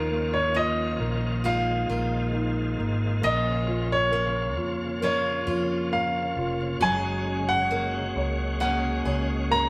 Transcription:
0.00 0.95 D#2 loud
0.00 2.31 D#3 medium
0.00 3.20 D#3 medium
0.00 3.23 D#3 medium
0.00 6.77 F3 medium
0.00 0.47 A#3 medium
0.00 1.41 C#4 medium
0.00 1.36 D#4 medium
0.00 1.45 F4 medium
0.00 6.77 F4 medium
0.00 0.36 A#4 medium
0.09 0.98 A#3 soft
0.34 0.56 C#5 medium
0.54 1.44 A#3 medium
0.54 1.42 F4 medium
0.54 1.48 D#5 medium
0.99 1.85 A#1 medium
0.99 1.87 A#3 medium
1.43 3.21 G#3 soft
1.43 4.12 A#3 medium
1.43 3.32 D#4 medium
1.43 3.19 F4 soft
1.43 1.89 F4 medium
1.43 2.75 F5 medium
1.88 2.75 A#1 medium
1.88 2.75 A#3 soft
1.88 3.24 F4 soft
2.33 3.20 D#3 medium
2.77 3.20 G#1 medium
2.77 3.20 A#3 soft
3.22 4.58 A#1 medium
3.22 6.81 A#2 medium
3.22 9.69 C#3 medium
3.22 5.90 A#3 medium
3.22 9.69 C#4 medium
3.22 5.02 F4 medium
3.22 3.87 D#5 medium
3.66 4.55 F4 soft
3.92 5.03 C#5 medium
4.11 5.02 A#3 medium
4.11 5.00 A#4 medium
4.57 5.43 F2 medium
4.57 5.45 F4 soft
5.01 7.70 A#3 medium
5.01 8.53 C#4 medium
5.01 5.45 F4 medium
5.01 6.77 A#4 soft
5.01 5.95 C#5 medium
5.47 6.33 F2 medium
5.47 6.35 F4 medium
5.47 6.81 F4 medium
5.91 6.79 A#3 medium
5.91 6.55 F5 medium
6.36 6.78 F1 medium
6.36 6.80 F4 soft
6.80 8.11 F#1 loud
6.80 9.69 F#3 medium
6.80 9.69 G#3 medium
6.80 9.69 F#4 medium
6.80 8.60 G#4 medium
6.80 7.51 G#5 loud
7.26 8.60 C#4 soft
7.49 8.59 F#5 loud
7.71 8.60 A#3 medium
7.71 9.46 A#4 medium
8.16 9.01 C#2 medium
8.16 9.04 C#5 medium
8.60 9.69 A#3 medium
8.60 9.69 C#4 medium
8.60 9.69 C#4 soft
8.60 9.04 G#4 medium
8.60 9.53 F#5 medium
9.05 9.69 C#2 medium
9.05 9.69 G#4 medium
9.05 9.69 C#5 medium
9.51 9.69 A#4 medium
9.51 9.69 A#5 loud

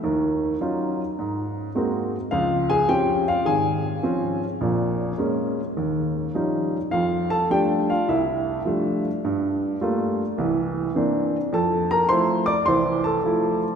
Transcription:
0.03 0.53 D#2 medium
0.03 0.53 D#3 medium
0.61 1.00 F#3 soft
0.61 1.01 C#4 soft
0.61 1.00 D#4 soft
0.61 1.01 F4 medium
1.19 1.68 G#2 medium
1.75 2.15 G#3 soft
1.75 2.15 A#3 soft
1.75 2.15 C4 soft
1.75 2.15 F#4 medium
2.31 2.81 C#2 medium
2.31 2.81 F3 medium
2.31 2.67 F4 medium
2.31 2.70 F5 medium
2.70 2.88 G#4 medium
2.70 2.89 G#5 medium
2.88 3.29 F3 medium
2.88 3.29 C4 soft
2.88 3.29 C#4 medium
2.88 3.24 G4 medium
2.88 3.24 G5 medium
3.28 3.45 F4 medium
3.28 3.47 F5 medium
3.45 3.96 G#1 medium
3.45 4.37 G#4 medium
3.45 4.38 G#5 medium
4.03 4.43 F3 soft
4.03 4.44 C4 soft
4.03 4.44 C#4 medium
4.61 5.11 A#1 medium
4.61 5.11 A#2 medium
5.18 5.59 G#3 soft
5.18 5.59 A#3 soft
5.18 5.59 C#4 medium
5.77 6.28 D#2 medium
6.35 6.76 F3 soft
6.35 6.76 G3 soft
6.35 6.76 C#4 soft
6.35 6.76 D#4 medium
6.91 7.43 F2 medium
6.91 7.29 F4 medium
6.91 7.32 F5 medium
7.30 7.49 A4 medium
7.30 7.49 A5 medium
7.50 7.91 F3 soft
7.50 7.91 G3 soft
7.50 7.91 A3 soft
7.50 7.91 D4 medium
7.50 7.60 G4 medium
7.50 7.60 G5 medium
7.90 8.08 F4 medium
7.90 8.09 F5 medium
8.08 8.58 C2 medium
8.08 9.00 E4 medium
8.08 9.01 E5 medium
8.65 9.06 F3 soft
8.65 9.06 G3 soft
8.65 9.06 A3 soft
8.65 9.07 D4 soft
9.24 9.74 G2 medium
9.81 10.21 G3 medium
9.81 10.21 A3 soft
9.81 10.22 A#3 soft
9.81 10.22 F4 medium
10.38 10.88 C2 medium
10.38 10.88 E3 medium
10.95 11.35 E3 medium
10.95 11.36 A#3 soft
10.95 11.36 C4 soft
10.95 11.36 D4 medium
11.53 12.02 F2 medium
11.53 11.89 A4 medium
11.53 11.92 A5 medium
11.91 12.09 A#4 medium
11.91 12.10 A#5 medium
12.09 12.50 F3 medium
12.09 12.50 A3 soft
12.09 12.50 E4 medium
12.09 12.45 C5 medium
12.09 12.44 C6 medium
12.46 12.65 D5 medium
12.46 12.66 D6 medium
12.66 13.17 C2 medium
12.66 13.17 E3 medium
12.66 13.03 C5 medium
12.66 13.01 C6 medium
13.04 13.59 A4 medium
13.04 13.57 A5 medium
13.25 13.64 F3 soft
13.25 13.64 A3 soft
13.25 13.65 E4 medium

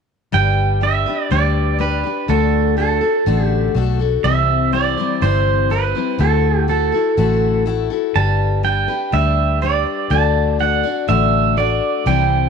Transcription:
0.32 1.04 G1 medium
0.32 0.80 G3 medium
0.32 0.82 D4 medium
0.32 0.82 G4 medium
0.32 0.83 B4 medium
0.32 0.83 G5 medium
0.81 1.06 G3 medium
0.81 1.07 D4 medium
0.81 1.06 G4 medium
0.81 1.05 B4 medium
0.81 1.33 E5 medium
1.06 1.30 D4 soft
1.06 1.31 G4 soft
1.06 1.31 B4 soft
1.31 2.02 D2 medium
1.31 1.77 G3 medium
1.31 1.79 D4 medium
1.31 1.80 G4 medium
1.31 1.80 B4 medium
1.31 1.77 D5 medium
1.79 2.04 G3 medium
1.79 2.04 D4 medium
1.79 2.04 G4 medium
1.79 2.31 B4 medium
1.79 2.02 B4 medium
2.03 2.28 D4 soft
2.03 2.29 G4 soft
2.03 2.28 B4 soft
2.28 2.99 D2 medium
2.28 2.77 D3 medium
2.28 2.75 A3 medium
2.28 2.76 D4 medium
2.28 2.77 F#4 medium
2.28 2.77 A4 medium
2.28 2.79 A4 medium
2.77 3.02 A3 soft
2.77 3.02 D4 medium
2.77 3.02 F#4 medium
2.77 3.44 A4 medium
2.77 3.00 A4 medium
3.01 3.26 D4 soft
3.01 3.26 F#4 soft
3.01 3.26 A4 medium
3.26 3.68 A1 medium
3.26 3.75 D3 medium
3.26 3.73 A3 medium
3.26 3.75 D4 medium
3.26 3.75 F#4 medium
3.26 3.76 A4 medium
3.44 3.71 G4 medium
3.75 4.17 B1 medium
3.75 3.99 A3 medium
3.75 4.00 D4 medium
3.75 4.00 F#4 medium
3.75 3.98 A4 medium
3.99 4.25 D4 soft
3.99 4.25 F#4 soft
3.99 4.24 A4 soft
4.24 4.95 C2 medium
4.24 4.73 C3 medium
4.24 5.22 E3 medium
4.24 4.71 G3 medium
4.24 4.73 C4 medium
4.24 4.74 E4 medium
4.24 4.74 C5 medium
4.24 4.73 E5 loud
4.73 4.97 G3 medium
4.73 4.98 C4 medium
4.73 4.97 E4 medium
4.73 4.96 C5 medium
4.73 5.24 D5 medium
4.97 5.21 G3 soft
4.97 5.22 C4 soft
4.97 5.22 E4 soft
4.97 5.22 C5 medium
5.22 5.93 G1 medium
5.22 5.71 C3 medium
5.22 5.71 E3 medium
5.22 5.69 G3 medium
5.22 5.70 C4 medium
5.22 5.71 E4 medium
5.22 5.73 C5 medium
5.22 5.72 C5 medium
5.70 5.95 G3 medium
5.70 5.96 C4 medium
5.70 5.95 E4 medium
5.70 6.21 B4 medium
5.70 5.93 C5 medium
5.95 6.19 G3 soft
5.95 6.20 C4 soft
5.95 6.19 E4 soft
5.95 6.20 C5 soft
6.18 6.90 D2 medium
6.18 6.68 D3 medium
6.18 6.67 A3 medium
6.18 6.68 E4 medium
6.18 6.69 F#4 medium
6.18 6.66 A4 medium
6.18 6.69 A4 medium
6.68 6.93 A3 medium
6.68 6.93 E4 medium
6.68 6.93 F#4 medium
6.68 7.63 A4 medium
6.68 6.91 A4 medium
6.92 7.17 E4 soft
6.92 7.18 F#4 soft
6.92 7.17 A4 soft
7.17 7.88 A1 medium
7.17 7.66 D3 medium
7.17 7.64 A3 medium
7.17 7.66 E4 medium
7.17 7.67 F#4 medium
7.17 7.67 A4 medium
7.66 7.91 A3 medium
7.66 7.91 E4 medium
7.66 7.90 F#4 medium
7.66 7.89 A4 medium
7.90 8.15 E4 soft
7.90 8.16 F#4 soft
7.90 8.15 A4 soft
8.15 8.86 G1 medium
8.15 8.62 G3 medium
8.15 8.64 D4 medium
8.15 8.64 G4 medium
8.15 8.65 B4 medium
8.15 8.64 A5 medium
8.63 8.88 G3 medium
8.63 8.89 D4 medium
8.63 8.89 G4 medium
8.63 8.87 B4 medium
8.63 9.15 G5 medium
8.88 9.12 D4 soft
8.88 9.13 G4 soft
8.88 9.13 B4 soft
9.12 9.84 D2 medium
9.12 9.60 G3 medium
9.12 9.61 D4 medium
9.12 9.62 G4 medium
9.12 9.63 B4 medium
9.12 9.59 E5 medium
9.62 10.10 G3 medium
9.62 10.10 D4 medium
9.62 10.11 G4 medium
9.62 10.12 B4 medium
9.62 10.13 D5 medium
10.10 10.81 D2 medium
10.10 10.59 D3 medium
10.10 10.58 A3 medium
10.10 10.59 D4 medium
10.10 10.60 F#4 medium
10.10 10.61 D5 medium
10.10 10.57 A5 medium
10.59 10.84 A3 soft
10.59 10.85 D4 medium
10.59 10.84 F#4 medium
10.59 10.82 D5 medium
10.59 11.11 F#5 medium
10.83 11.08 D4 soft
10.83 11.08 F#4 medium
10.83 11.08 D5 medium
11.08 11.79 A1 medium
11.08 11.57 D3 medium
11.08 11.56 A3 medium
11.08 11.57 D4 medium
11.08 11.58 F#4 medium
11.08 11.58 D5 medium
11.08 11.59 E5 medium
11.57 12.06 A3 medium
11.57 12.07 D4 medium
11.57 12.07 F#4 medium
11.57 12.08 D5 medium
12.06 12.49 C2 medium
12.06 12.49 C3 medium
12.06 12.49 E3 medium
12.06 12.49 G3 medium
12.06 12.49 C4 medium
12.06 12.49 E4 medium
12.06 12.49 C5 medium
12.06 12.49 G5 medium

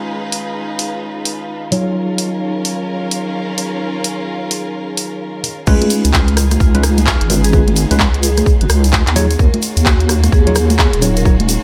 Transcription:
0.00 1.70 G#3 medium
0.00 1.70 C#4 medium
0.00 1.68 D#4 medium
0.00 11.63 D#4 medium
0.00 1.68 F4 medium
0.00 1.70 F4 medium
0.00 1.68 G#4 medium
0.00 11.63 G#4 medium
0.00 1.68 B4 medium
0.00 1.70 B4 medium
0.00 11.63 C#5 medium
0.00 11.63 F5 medium
0.32 open hi-hat loud
0.79 open hi-hat medium
1.25 open hi-hat loud
1.72 5.42 F#3 medium
1.72 5.63 C#4 medium
1.72 5.42 D#4 medium
1.72 5.63 F4 medium
1.72 5.42 F4 medium
1.72 5.63 A#4 medium
1.72 5.42 C#5 medium
1.72 open hi-hat medium
2.18 open hi-hat loud
2.65 open hi-hat medium
3.11 open hi-hat loud
3.58 open hi-hat medium
4.04 open hi-hat loud
4.51 open hi-hat medium
4.97 open hi-hat loud
5.44 open hi-hat medium
5.67 5.79 C#2 loud
5.67 6.37 G#3 loud
5.67 9.13 B3 medium
5.67 6.37 C#4 medium
5.67 9.13 D#4 medium
5.67 6.37 F4 medium
5.67 11.63 F4 medium
5.67 5.84 G#4 medium
5.67 9.13 G#4 medium
5.67 6.37 B4 loud
5.67 kick loud
5.67 crash loud
5.67 shaker soft
5.82 closed hi-hat medium
5.82 high conga medium
5.90 open hi-hat loud
5.90 shaker medium
6.05 6.57 C#2 medium
6.05 closed hi-hat medium
6.05 shaker medium
6.14 6.43 F4 loud
6.14 kick loud
6.14 clap loud
6.14 shaker soft
6.28 closed hi-hat soft
6.37 cross-stick medium
6.37 open hi-hat loud
6.37 shaker medium
6.51 cross-stick soft
6.51 closed hi-hat medium
6.51 high conga medium
6.51 shaker medium
6.60 7.16 C#2 loud
6.60 6.90 F4 medium
6.60 kick loud
6.60 shaker soft
6.75 6.83 G#3 medium
6.75 6.83 C#4 medium
6.75 6.83 F4 medium
6.75 6.83 B4 loud
6.75 closed hi-hat soft
6.83 cross-stick medium
6.83 open hi-hat loud
6.83 shaker medium
6.98 closed hi-hat medium
6.98 high conga medium
6.98 shaker medium
7.07 7.28 F4 loud
7.07 kick loud
7.07 clap loud
7.07 shaker soft
7.21 7.86 G#1 loud
7.21 closed hi-hat medium
7.30 7.51 G#3 medium
7.30 7.51 C#4 medium
7.30 7.51 F4 medium
7.30 7.51 B4 medium
7.30 open hi-hat loud
7.30 shaker medium
7.44 7.65 G#4 loud
7.44 closed hi-hat medium
7.44 shaker medium
7.53 7.62 G#3 medium
7.53 7.62 C#4 medium
7.53 7.62 F4 medium
7.53 7.62 B4 medium
7.53 kick loud
7.53 shaker soft
7.68 closed hi-hat soft
7.68 high conga medium
7.76 open hi-hat loud
7.76 shaker medium
7.91 8.43 C#2 medium
7.91 8.00 G#3 medium
7.91 8.00 C#4 medium
7.91 8.00 F4 medium
7.91 8.00 B4 loud
7.91 closed hi-hat medium
7.91 shaker medium
8.00 kick loud
8.00 clap loud
8.00 shaker soft
8.14 closed hi-hat soft
8.23 8.45 G#4 medium
8.23 open hi-hat loud
8.23 shaker medium
8.37 cross-stick soft
8.37 closed hi-hat medium
8.37 high conga medium
8.37 shaker medium
8.46 kick loud
8.46 shaker soft
8.61 8.68 G#1 loud
8.61 8.73 F#4 medium
8.61 closed hi-hat soft
8.69 9.02 C#2 loud
8.69 cross-stick medium
8.69 open hi-hat loud
8.69 shaker medium
8.84 closed hi-hat medium
8.84 shaker medium
8.93 kick loud
8.93 clap loud
9.07 9.36 D#2 medium
9.07 clap medium
9.07 closed hi-hat medium
9.16 9.25 F#3 loud
9.16 11.63 A#3 medium
9.16 11.63 C#4 medium
9.16 9.25 D#4 medium
9.16 9.25 F4 medium
9.16 11.63 F#4 medium
9.16 9.33 G#4 medium
9.16 9.25 C#5 loud
9.16 open hi-hat loud
9.16 shaker loud
9.31 closed hi-hat medium
9.31 shaker medium
9.39 9.51 D#2 loud
9.39 9.56 A#4 loud
9.39 kick loud
9.39 shaker soft
9.54 closed hi-hat soft
9.54 high conga medium
9.62 open hi-hat loud
9.62 shaker medium
9.77 10.29 D#2 medium
9.77 closed hi-hat medium
9.77 shaker medium
9.86 10.15 F#4 medium
9.86 kick loud
9.86 clap loud
9.86 shaker soft
10.00 closed hi-hat soft
10.09 cross-stick medium
10.09 open hi-hat loud
10.09 shaker loud
10.24 cross-stick soft
10.24 closed hi-hat medium
10.24 high conga medium
10.24 shaker medium
10.32 10.88 D#2 loud
10.32 10.62 G#4 medium
10.32 kick loud
10.32 shaker soft
10.47 10.55 F#3 medium
10.47 10.55 D#4 medium
10.47 10.55 F4 medium
10.47 10.55 C#5 loud
10.47 closed hi-hat soft
10.55 cross-stick medium
10.55 open hi-hat loud
10.55 shaker medium
10.70 closed hi-hat medium
10.70 high conga medium
10.70 shaker medium
10.79 11.01 G#4 loud
10.79 kick loud
10.79 clap loud
10.79 shaker soft
10.93 11.58 D#1 medium
10.93 closed hi-hat soft
11.02 11.23 F#3 medium
11.02 11.23 D#4 medium
11.02 11.23 F4 medium
11.02 11.23 C#5 medium
11.02 open hi-hat loud
11.02 shaker loud
11.17 11.37 A#4 loud
11.17 closed hi-hat medium
11.17 shaker medium
11.25 11.34 F#3 medium
11.25 11.34 D#4 medium
11.25 11.34 F4 medium
11.25 11.34 C#5 medium
11.25 kick loud
11.25 shaker soft
11.40 closed hi-hat medium
11.40 high conga medium
11.49 open hi-hat loud
11.49 shaker loud

